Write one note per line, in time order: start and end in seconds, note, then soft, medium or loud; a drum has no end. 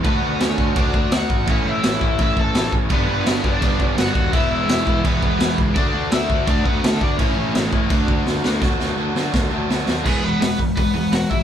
0.04 0.18 D2 loud
0.04 0.57 D3 medium
0.04 0.60 A3 medium
0.04 0.38 B3 medium
0.04 0.57 D4 loud
0.04 0.57 F#4 loud
0.04 0.41 B4 loud
0.04 kick loud
0.04 crash medium
0.22 0.36 D2 medium
0.40 0.54 D2 loud
0.40 0.74 C#4 medium
0.40 0.78 C#5 medium
0.40 snare loud
0.40 crash medium
0.58 0.72 D2 loud
0.58 1.47 D3 medium
0.58 1.47 A3 medium
0.58 1.47 D4 medium
0.58 1.46 F#4 medium
0.58 kick medium
0.75 0.90 D2 medium
0.75 1.45 D3 medium
0.75 1.46 A3 medium
0.75 1.47 D4 loud
0.75 1.10 D4 medium
0.75 1.47 F#4 medium
0.75 1.14 D5 loud
0.75 kick loud
0.75 crash medium
0.94 1.08 D2 loud
0.94 kick medium
1.12 1.25 D2 medium
1.12 1.46 F#4 medium
1.12 1.49 F#5 loud
1.12 snare loud
1.12 crash medium
1.30 1.44 G#1 medium
1.30 kick medium
1.47 1.61 A1 medium
1.47 1.99 A2 medium
1.47 2.00 E3 medium
1.47 2.00 A3 medium
1.47 2.00 C#4 medium
1.47 1.65 C#4 medium
1.47 1.99 E4 medium
1.47 1.68 C#5 loud
1.47 kick loud
1.47 crash medium
1.66 1.79 A1 medium
1.66 2.16 E4 medium
1.66 2.21 E5 loud
1.83 1.97 A1 medium
1.83 snare loud
1.83 crash medium
2.01 2.15 A1 loud
2.01 2.90 A2 medium
2.01 2.90 E3 medium
2.01 2.89 A3 medium
2.01 2.89 C#4 medium
2.01 2.89 E4 medium
2.01 kick medium
2.18 2.33 A1 medium
2.18 2.88 A2 medium
2.18 2.89 E3 medium
2.18 2.89 A3 medium
2.18 2.90 C#4 medium
2.18 2.90 E4 medium
2.18 kick loud
2.18 crash medium
2.22 2.37 E4 medium
2.22 2.39 E5 loud
2.37 2.50 A1 loud
2.37 2.71 A4 medium
2.37 2.71 A5 loud
2.37 kick medium
2.54 2.68 A1 medium
2.54 snare loud
2.54 crash medium
2.72 2.86 A1 medium
2.72 kick medium
2.90 3.04 G1 medium
2.90 3.43 G2 medium
2.90 3.43 D3 medium
2.90 3.44 G3 medium
2.90 3.07 B3 medium
2.90 3.44 B3 medium
2.90 3.43 D4 loud
2.90 3.41 G4 loud
2.90 3.10 B4 loud
2.90 kick loud
2.90 crash medium
3.08 3.22 G1 medium
3.08 3.26 B3 medium
3.08 3.27 B4 medium
3.26 3.39 G1 medium
3.26 3.43 C#4 medium
3.26 3.45 C#5 medium
3.26 snare loud
3.26 crash medium
3.42 3.58 G1 loud
3.42 4.32 D3 medium
3.42 4.32 G3 medium
3.42 4.32 B3 medium
3.42 4.32 D4 loud
3.42 3.94 D4 medium
3.42 4.31 G4 medium
3.42 3.85 D5 medium
3.42 kick medium
3.46 4.33 G2 medium
3.60 3.76 G1 loud
3.60 4.31 G2 medium
3.60 4.32 D3 medium
3.60 4.32 G3 medium
3.60 4.33 B3 medium
3.60 4.33 D4 medium
3.60 kick loud
3.60 crash medium
3.80 3.93 G1 medium
3.80 kick loud
3.85 3.99 C#5 medium
3.97 4.11 G1 medium
3.97 4.31 F#4 medium
3.97 4.33 F#5 loud
3.97 snare loud
3.97 crash medium
4.15 4.29 D#2 medium
4.15 kick medium
4.33 4.47 E1 loud
4.33 4.85 E3 medium
4.33 4.86 G#3 medium
4.33 4.86 B3 medium
4.33 4.50 E4 medium
4.33 4.85 E4 medium
4.33 4.84 G#4 loud
4.33 4.51 E5 medium
4.33 kick loud
4.33 crash medium
4.50 4.64 E1 medium
4.50 5.01 E4 medium
4.50 5.04 E5 loud
4.68 4.82 E1 medium
4.68 snare loud
4.68 crash medium
4.85 5.01 E1 loud
4.85 5.75 E3 medium
4.85 5.75 G#3 medium
4.85 5.75 B3 medium
4.85 5.74 E4 loud
4.85 5.74 G#4 loud
4.85 kick loud
5.04 5.18 E1 loud
5.04 5.75 E3 medium
5.04 5.75 G#3 medium
5.04 5.21 B3 medium
5.04 5.76 B3 medium
5.04 5.77 E4 medium
5.04 5.22 B4 loud
5.04 kick loud
5.04 crash medium
5.22 5.36 E1 medium
5.22 5.56 B3 medium
5.22 5.56 B4 medium
5.22 kick medium
5.40 5.54 E1 loud
5.40 snare loud
5.40 crash medium
5.58 5.76 C#2 medium
5.58 kick loud
5.75 5.90 D2 loud
5.75 6.28 D3 medium
5.75 6.30 A3 loud
5.75 6.09 D4 medium
5.75 6.28 D4 loud
5.75 6.27 F#4 loud
5.75 6.27 A4 loud
5.75 6.13 D5 medium
5.75 kick loud
5.75 crash medium
5.94 6.08 D2 medium
6.12 6.25 D2 medium
6.12 6.45 E4 medium
6.12 6.48 E5 medium
6.12 snare loud
6.12 crash medium
6.28 6.43 D2 loud
6.28 7.18 D3 medium
6.28 7.19 A3 medium
6.28 7.17 D4 medium
6.28 7.17 F#4 medium
6.28 7.21 A4 medium
6.28 kick medium
6.46 6.61 D2 loud
6.46 7.17 D3 medium
6.46 7.20 A3 medium
6.46 6.64 D4 medium
6.46 7.18 D4 medium
6.46 7.19 F#4 medium
6.46 6.64 D5 medium
6.46 kick loud
6.46 crash medium
6.64 6.79 D2 loud
6.64 6.81 B3 medium
6.64 6.83 B4 medium
6.64 kick medium
6.84 6.97 D2 loud
6.84 7.00 A3 medium
6.84 7.02 A4 medium
6.84 snare loud
6.84 crash medium
7.00 7.15 D2 medium
7.00 7.17 D4 medium
7.00 7.18 D5 medium
7.00 kick medium
7.18 7.33 A1 medium
7.18 7.71 A2 medium
7.18 7.71 E3 medium
7.18 7.72 A3 medium
7.18 7.52 C#4 medium
7.18 7.72 C#4 medium
7.18 7.71 E4 medium
7.18 7.70 A4 loud
7.18 7.52 C#5 medium
7.18 kick loud
7.18 crash medium
7.37 7.51 A1 medium
7.55 7.69 A1 medium
7.55 snare loud
7.55 crash medium
7.71 7.86 A1 medium
7.71 7.90 A2 medium
7.71 7.89 E3 medium
7.71 7.89 A3 medium
7.71 7.89 C#4 medium
7.71 7.89 E4 loud
7.71 7.88 A4 medium
7.71 kick medium
7.90 8.04 D2 loud
7.90 8.42 D3 medium
7.90 8.43 A3 loud
7.90 8.43 D4 loud
7.90 8.43 F#4 loud
7.90 8.41 A4 loud
7.90 kick loud
7.90 crash medium
8.08 8.22 D2 medium
8.08 kick medium
8.26 8.39 D2 medium
8.26 snare medium
8.42 8.61 D2 medium
8.42 8.60 A3 medium
8.42 8.61 D4 medium
8.42 8.61 F#4 medium
8.42 8.60 A4 medium
8.42 snare loud
8.46 8.60 D3 medium
8.61 8.75 D2 medium
8.61 8.78 D3 medium
8.61 8.79 F#3 medium
8.61 8.79 A3 medium
8.61 8.79 D4 loud
8.61 8.81 F#4 loud
8.61 kick loud
8.61 snare medium
8.80 8.94 D2 medium
8.80 8.96 D3 medium
8.80 8.97 F#3 loud
8.80 8.97 A3 medium
8.80 8.97 D4 medium
8.80 8.98 F#4 medium
8.80 snare medium
8.97 9.11 D2 medium
8.97 9.14 D3 medium
8.97 9.15 F#3 medium
8.97 9.15 A3 medium
8.97 9.16 D4 medium
8.97 9.17 F#4 loud
9.15 9.32 D3 loud
9.15 9.29 D3 medium
9.15 9.32 F#3 medium
9.15 9.32 A3 loud
9.15 9.33 D4 loud
9.15 9.35 F#4 loud
9.15 snare medium
9.33 9.47 D2 medium
9.33 9.49 D3 medium
9.33 9.50 F#3 medium
9.33 9.50 A3 medium
9.33 9.51 D4 medium
9.33 9.52 F#4 medium
9.33 kick loud
9.33 snare medium
9.50 9.65 D2 medium
9.50 9.67 D3 medium
9.50 9.68 F#3 loud
9.50 9.68 A3 loud
9.50 9.69 D4 loud
9.50 9.70 F#4 loud
9.69 9.83 D2 medium
9.69 9.86 D3 medium
9.69 9.87 F#3 medium
9.69 9.87 A3 medium
9.69 9.87 D4 medium
9.69 9.88 F#4 loud
9.69 snare medium
9.87 10.01 D#2 medium
9.87 10.04 D3 medium
9.87 10.04 F#3 medium
9.87 10.05 A3 medium
9.87 10.05 D4 medium
9.87 10.05 F#4 medium
9.87 snare medium
10.05 10.16 E1 medium
10.05 10.22 E3 medium
10.05 10.22 G#3 medium
10.05 10.23 B3 medium
10.05 10.24 G#4 medium
10.05 kick loud
10.05 crash loud
10.23 10.35 E1 medium
10.23 10.39 E3 medium
10.23 10.40 G#3 medium
10.23 10.57 B3 medium
10.23 10.59 B4 loud
10.41 10.63 E1 medium
10.41 10.57 E3 medium
10.41 10.57 G#3 medium
10.41 snare loud
10.41 open hi-hat medium
10.59 10.76 E3 medium
10.59 10.76 G#3 medium
10.59 kick medium
10.77 10.88 E1 medium
10.77 10.93 E3 medium
10.77 10.93 G#3 medium
10.77 11.11 B3 medium
10.77 11.14 B4 medium
10.77 kick loud
10.77 open hi-hat medium
10.95 11.06 E1 medium
10.95 11.12 E3 medium
10.95 11.12 G#3 medium
11.12 11.23 E1 medium
11.12 11.29 E3 medium
11.12 11.29 G#3 medium
11.12 11.31 F#4 medium
11.12 11.30 F#5 loud
11.12 snare loud
11.12 open hi-hat medium
11.30 11.42 G#1 medium
11.30 11.43 E3 medium
11.30 11.43 G#3 medium
11.30 11.43 E4 medium
11.30 11.43 E5 loud
11.30 kick medium